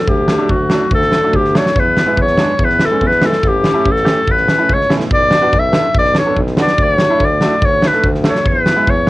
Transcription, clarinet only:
0.00 0.10 A4 medium
0.09 0.52 G4 medium
0.51 0.92 F#4 medium
0.94 1.37 A4 loud
1.36 1.59 G4 medium
1.57 1.81 C#5 medium
1.79 2.19 B4 medium
2.21 2.66 C#5 medium
2.65 2.87 B4 medium
2.85 3.08 A4 medium
3.07 3.27 B4 medium
3.26 3.49 A4 medium
3.48 3.93 G4 medium
3.91 4.33 A4 medium
4.31 4.75 B4 medium
4.73 4.92 C#5 medium
5.14 5.60 D5 loud
5.59 5.98 E5 loud
5.99 6.17 D5 loud
6.19 6.37 C#5 medium
6.62 6.85 D5 medium
6.83 7.26 C#5 loud
7.25 7.67 D5 medium
7.65 7.89 C#5 loud
7.88 8.06 B4 medium
8.29 8.49 C#5 medium
8.48 8.91 B4 loud
8.90 9.10 C#5 medium

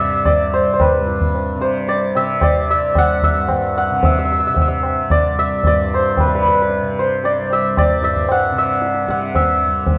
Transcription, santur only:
0.00 0.25 D5 medium
0.00 2.16 E5 medium
0.00 0.52 F#5 medium
0.25 1.88 D5 medium
0.54 0.73 C5 medium
0.74 0.87 C5 soft
0.81 1.67 B4 medium
1.61 4.25 C5 medium
1.89 2.43 D5 medium
2.16 2.70 E5 medium
2.43 4.89 D5 medium
2.71 3.23 E5 medium
2.98 3.77 F#5 loud
3.24 4.04 E5 medium
3.78 5.93 F#5 medium
4.05 4.11 E5 medium
4.12 4.18 E5 medium
4.19 4.24 E5 medium
4.25 4.32 E5 soft
4.32 4.39 E5 medium
4.39 4.47 E5 soft
4.47 4.54 E5 medium
4.54 4.61 E5 soft
4.62 4.68 E5 medium
4.68 5.38 E5 medium
5.11 5.67 D5 medium
5.39 7.52 E5 medium
5.67 7.25 D5 medium
5.94 6.26 C5 medium
6.20 6.27 B4 medium
6.28 6.35 B4 soft
6.35 6.42 B4 medium
6.42 6.48 B4 soft
6.48 6.54 B4 medium
6.55 6.62 B4 soft
6.62 7.05 B4 medium
6.99 9.63 C5 medium
7.25 7.78 D5 medium
7.53 8.04 E5 medium
7.78 9.98 D5 medium
8.04 8.58 E5 medium
8.32 9.10 F#5 medium
8.58 9.35 E5 medium
9.10 9.98 F#5 medium
9.36 9.98 E5 medium

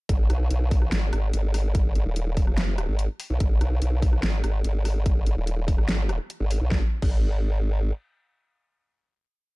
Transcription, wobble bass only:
0.09 0.28 G#1 loud
0.30 0.49 B1 loud
0.51 0.90 B1 loud
0.92 1.11 G#1 loud
1.13 1.32 G#1 loud
1.33 1.94 G#1 medium
1.96 2.04 G#1 loud
2.06 2.46 D#1 loud
2.47 2.87 F#1 loud
2.89 3.08 G#1 medium
3.30 3.39 B1 loud
3.40 3.59 G#1 medium
3.61 3.80 B1 loud
3.82 4.21 B1 loud
4.23 4.42 G#1 loud
4.44 4.63 G#1 loud
4.64 5.25 G#1 medium
5.27 5.35 G#1 loud
5.37 5.77 D#1 loud
5.78 6.18 G#1 loud
6.40 6.59 G#1 loud
6.61 6.70 B1 loud
6.71 6.83 G#1 medium
7.02 7.92 G#1 medium

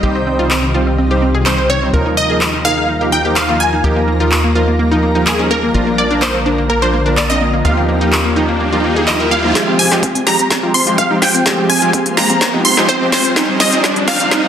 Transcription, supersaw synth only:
0.03 0.36 G3 medium
0.03 0.36 C4 medium
0.03 0.36 D#4 medium
0.03 0.36 C5 medium
0.39 0.50 G3 medium
0.39 0.50 C4 medium
0.39 0.50 D#4 medium
0.39 0.50 C5 loud
0.74 0.82 G3 medium
0.74 0.82 C4 medium
0.74 0.82 D#4 medium
0.74 0.82 C5 medium
1.11 1.17 G3 medium
1.11 1.17 C4 medium
1.11 1.17 D#4 medium
1.11 1.17 C5 medium
1.46 1.53 G3 medium
1.46 1.53 C4 medium
1.46 1.53 D#4 medium
1.46 1.53 C5 medium
1.82 1.89 G3 medium
1.82 1.89 C4 medium
1.82 1.89 D#4 medium
1.82 1.89 C5 medium
1.93 2.27 F3 medium
1.93 2.27 A#3 medium
1.93 2.27 D#4 medium
1.93 2.27 A#4 medium
2.30 2.40 F3 medium
2.30 2.40 A#3 medium
2.30 2.40 D#4 medium
2.30 2.40 A#4 loud
2.65 2.72 F3 medium
2.65 2.72 A#3 medium
2.65 2.72 D#4 medium
2.65 2.72 A#4 medium
3.01 3.08 F3 medium
3.01 3.08 A#3 medium
3.01 3.08 D#4 medium
3.01 3.08 A#4 medium
3.25 3.36 F3 medium
3.25 3.35 A#3 medium
3.25 3.35 D#4 medium
3.25 3.35 A#4 medium
3.49 3.55 F3 medium
3.49 3.55 A#3 medium
3.49 3.55 D#4 medium
3.49 3.55 A#4 loud
3.84 4.17 F3 medium
3.84 4.17 A#3 medium
3.84 4.17 D#4 medium
3.84 4.17 A#4 loud
4.20 4.31 F3 medium
4.20 4.31 A#3 medium
4.20 4.31 D#4 medium
4.20 4.31 A#4 loud
4.55 4.63 F3 medium
4.55 4.63 A#3 medium
4.55 4.63 D#4 medium
4.55 4.63 A#4 medium
4.92 4.98 F3 medium
4.92 4.98 A#3 medium
4.92 4.98 D#4 medium
4.92 4.98 A#4 medium
5.15 5.26 F3 medium
5.15 5.26 A#3 medium
5.15 5.26 D#4 medium
5.15 5.26 A#4 medium
5.39 5.46 F3 medium
5.39 5.46 A#3 medium
5.39 5.46 D#4 medium
5.39 5.46 A#4 medium
5.74 6.08 F3 medium
5.74 6.08 A#3 medium
5.74 6.08 D4 medium
5.74 6.08 A#4 medium
6.11 6.21 F3 medium
6.11 6.21 A#3 medium
6.11 6.21 D4 medium
6.11 6.21 A#4 loud
6.46 6.53 F3 medium
6.46 6.53 A#3 medium
6.46 6.53 D4 medium
6.46 6.53 A#4 medium
6.82 6.89 F3 medium
6.82 6.89 A#3 medium
6.82 6.89 D4 medium
6.82 6.89 A#4 medium
7.06 7.17 F3 medium
7.06 7.17 A#3 medium
7.06 7.16 D4 medium
7.06 7.17 A#4 medium
7.30 7.36 F3 medium
7.30 7.36 A#3 medium
7.30 7.36 D4 medium
7.30 7.36 A#4 loud
7.65 7.98 F3 medium
7.65 7.98 A#3 medium
7.65 7.98 D#4 medium
7.65 7.98 G4 medium
8.01 8.12 F3 medium
8.01 8.12 A#3 medium
8.01 8.12 D#4 medium
8.01 8.12 G4 loud
8.36 8.44 F3 medium
8.36 8.44 A#3 medium
8.36 8.44 D#4 medium
8.36 8.44 G4 medium
8.72 8.79 F3 medium
8.72 8.79 A#3 medium
8.72 8.79 D#4 medium
8.72 8.79 G4 medium
9.08 9.15 F3 medium
9.08 9.15 A#3 medium
9.08 9.15 D#4 medium
9.08 9.15 G4 loud
9.44 9.51 F3 medium
9.44 9.51 A#3 medium
9.44 9.51 D#4 medium
9.44 9.51 G4 medium
9.55 9.89 F3 medium
9.55 9.89 G#3 medium
9.55 9.89 C4 medium
9.55 9.89 G4 medium
9.91 10.02 F3 medium
9.91 10.02 G#3 medium
9.91 10.02 C4 medium
9.91 10.02 G4 loud
10.27 10.34 F3 medium
10.27 10.34 G#3 medium
10.27 10.34 C4 medium
10.27 10.34 G4 medium
10.63 10.70 F3 medium
10.63 10.70 G#3 medium
10.63 10.70 C4 medium
10.63 10.70 G4 medium
10.87 10.97 F3 medium
10.87 10.97 G#3 medium
10.87 10.97 C4 medium
10.87 10.97 G4 medium
11.11 11.17 F3 medium
11.11 11.17 G#3 medium
11.11 11.17 C4 medium
11.11 11.17 G4 loud
11.46 11.79 F3 medium
11.46 11.79 G#3 medium
11.46 11.79 C4 medium
11.46 11.79 G4 loud
11.82 11.93 F3 medium
11.82 11.93 G#3 medium
11.82 11.93 C4 medium
11.82 11.93 G4 loud
12.17 12.24 F3 medium
12.17 12.24 G#3 medium
12.17 12.24 C4 medium
12.17 12.24 G4 medium
12.53 12.60 F3 medium
12.53 12.60 G#3 medium
12.53 12.60 C4 medium
12.53 12.60 G4 medium
12.77 12.88 F3 medium
12.77 12.88 G#3 medium
12.77 12.88 C4 medium
12.77 12.88 G4 medium
13.01 13.08 F3 loud
13.01 13.08 G#3 medium
13.01 13.08 C4 medium
13.01 13.08 G4 loud
13.36 13.69 G3 medium
13.36 13.70 C4 medium
13.36 13.70 D#4 medium
13.36 13.70 C5 medium
13.73 13.83 G3 medium
13.73 13.83 C4 medium
13.73 13.83 D#4 medium
13.73 13.83 C5 loud
14.08 14.15 G3 medium
14.08 14.15 C4 medium
14.08 14.15 D#4 medium
14.08 14.15 C5 medium
14.31 14.48 G3 medium
14.31 14.48 C4 medium
14.31 14.48 D#4 medium
14.31 14.48 C5 medium

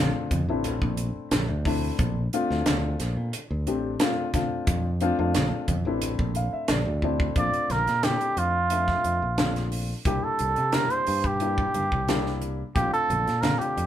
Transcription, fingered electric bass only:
0.00 0.12 A#1 medium
0.31 0.46 F2 medium
0.49 0.77 A1 medium
0.82 1.10 A#1 medium
1.16 muted fingered electric bass stroke soft
1.31 1.46 A#1 loud
1.48 1.90 D2 medium
1.99 2.27 A#1 loud
2.50 2.64 D2 medium
2.66 2.94 D2 medium
3.00 3.14 A#1 medium
3.17 3.30 A#2 medium
3.51 3.67 D2 medium
3.67 3.95 A1 medium
4.67 5.10 F2 medium
5.19 5.32 F2 medium
5.35 5.50 A#1 medium
5.68 5.83 F2 medium
5.85 6.14 A1 medium
6.19 6.47 A#1 medium
6.53 muted fingered electric bass stroke soft
6.69 6.84 A#1 loud
6.86 7.28 D2 medium
7.36 7.51 A#1 medium
7.70 7.85 A#1 medium
7.87 8.16 A#2 medium
8.37 8.93 F2 medium
9.05 9.19 F2 medium
9.22 9.92 A#1 medium
10.05 10.20 C2 medium
10.24 muted fingered electric bass stroke soft
10.40 10.55 C2 medium
10.58 10.86 C3 medium
11.08 11.64 G2 medium
11.75 11.89 G2 medium
11.92 12.62 C2 medium
12.75 12.90 A#1 medium
13.10 13.24 A#1 medium
13.27 13.55 A#2 medium
13.77 13.86 F2 medium

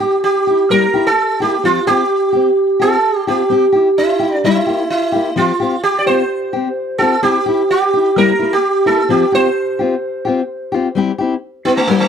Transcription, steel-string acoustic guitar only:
0.00 0.15 G4 medium
0.00 muted steel-string acoustic guitar stroke soft
0.47 0.63 E4 soft
0.47 0.61 G4 soft
0.70 0.85 G3 medium
0.70 0.85 A#3 medium
0.70 0.85 E4 medium
0.70 0.86 G4 medium
0.94 1.10 A#3 soft
0.94 1.09 E4 medium
0.94 1.08 G4 medium
1.40 1.56 A#3 soft
1.40 1.55 E4 soft
1.40 1.54 G4 medium
1.64 1.78 F3 medium
1.64 1.79 C4 medium
1.64 1.79 F4 medium
1.64 1.79 G4 medium
1.87 2.03 C4 soft
1.87 2.02 F4 soft
1.87 2.01 G4 medium
2.33 2.49 C4 soft
2.33 2.47 G4 medium
2.33 muted steel-string acoustic guitar stroke soft
2.80 2.96 C4 soft
2.80 2.95 F4 soft
2.80 2.94 G4 medium
3.27 3.43 C4 soft
3.27 3.42 F4 soft
3.27 3.41 G4 soft
3.50 3.64 C4 medium
3.50 3.66 G4 medium
3.50 muted steel-string acoustic guitar stroke medium
3.72 3.89 E4 soft
3.72 3.87 G4 medium
4.19 4.36 E4 soft
4.19 4.34 G4 medium
4.44 4.58 G3 medium
4.44 4.59 E4 medium
4.44 4.59 G4 medium
4.44 muted steel-string acoustic guitar stroke medium
4.66 4.83 A#3 soft
4.66 4.82 E4 soft
4.66 4.81 G4 medium
5.12 5.29 A#3 soft
5.12 5.28 E4 soft
5.12 5.27 G4 medium
5.36 5.51 F3 medium
5.36 5.51 C4 medium
5.36 5.51 F4 medium
5.36 5.52 G4 medium
5.60 5.76 C4 soft
5.60 5.75 F4 medium
5.60 5.74 G4 medium
6.06 6.22 C4 soft
6.06 6.22 F4 soft
6.06 6.21 G4 soft
6.53 6.69 C4 soft
6.53 6.67 G4 medium
6.99 7.15 C4 soft
6.99 7.15 F4 soft
6.99 7.14 G4 medium
7.22 7.37 C4 medium
7.22 7.38 E4 medium
7.22 7.38 G4 medium
7.46 7.62 E4 soft
7.46 7.60 G4 medium
7.94 8.09 E4 soft
7.94 8.08 G4 medium
8.16 8.31 G3 medium
8.16 8.31 A#3 medium
8.16 8.32 E4 medium
8.39 8.55 A#3 soft
8.39 8.54 E4 soft
8.86 9.02 A#3 soft
8.86 9.00 E4 medium
9.09 9.24 F3 medium
9.09 9.24 C4 medium
9.09 9.24 F4 medium
9.09 9.25 G4 medium
9.32 9.48 C4 soft
9.32 9.48 F4 soft
9.32 9.47 G4 medium
9.79 9.95 C4 soft
9.79 9.94 F4 soft
9.79 9.94 G4 soft
10.25 10.42 C4 soft
10.25 10.41 F4 medium
10.25 10.40 G4 medium
10.72 10.88 C4 soft
10.72 10.88 F4 medium
10.72 10.87 G4 medium
10.95 11.10 G3 medium
10.95 11.10 C4 medium
10.95 11.11 E4 medium
10.95 11.11 G4 medium
11.18 11.35 C4 soft
11.18 11.34 E4 medium
11.18 11.33 G4 medium
11.65 11.81 C4 soft
11.65 11.80 E4 soft
11.65 11.80 G4 medium
11.89 12.04 G3 medium
11.89 12.04 A#3 medium
11.89 12.04 E4 medium
11.89 12.05 G4 medium

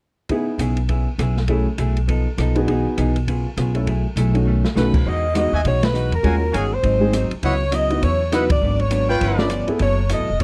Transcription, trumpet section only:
5.52 5.60 F#4 medium
5.52 5.60 D#5 medium
5.52 5.60 E5 medium
5.52 5.61 G#5 medium
6.23 6.35 F#4 medium
6.23 6.35 C#5 medium
6.23 6.35 F5 medium
6.23 6.35 G#5 medium
6.52 6.65 F#4 medium
6.52 6.65 C#5 medium
6.52 6.65 F5 medium
6.52 6.65 G#5 medium
7.43 7.55 E4 medium
7.43 7.55 B4 medium
7.43 7.54 D#5 medium
7.43 7.55 F#5 medium
8.32 8.44 E4 medium
8.32 8.44 B4 medium
8.32 8.44 D#5 medium
8.32 8.44 F#5 medium
9.09 9.48 F4 medium
9.09 9.48 B4 medium
9.09 9.48 C#5 medium
9.09 9.48 G5 loud

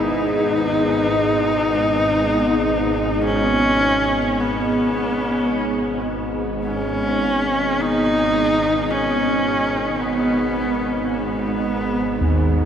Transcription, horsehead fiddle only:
0.00 3.24 D#4 loud
3.25 4.41 C#4 loud
4.39 6.09 B3 medium
6.65 7.83 C#4 loud
7.81 8.92 D#4 loud
8.90 10.02 C#4 loud
10.01 11.12 B3 medium
11.13 12.65 B3 medium

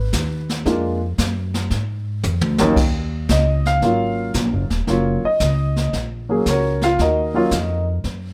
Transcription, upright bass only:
0.00 0.12 G#1 medium
0.13 0.64 D#2 loud
0.66 1.17 F2 medium
1.18 1.70 F#2 medium
1.71 2.22 G#2 medium
2.24 2.42 F2 medium
2.42 2.59 D2 medium
2.59 2.76 A#1 medium
2.76 3.28 D#2 medium
3.29 3.80 C#2 medium
3.82 4.33 G#1 medium
4.35 4.53 A#1 medium
4.53 4.70 F#1 medium
4.70 4.86 D#1 medium
4.87 5.21 F#1 medium
5.24 muted upright bass stroke soft
5.40 5.91 C#2 loud
5.93 6.44 A#1 medium
6.46 6.97 C#2 medium
6.99 7.50 D#2 medium
7.51 8.02 F2 loud
8.04 8.33 F#2 medium

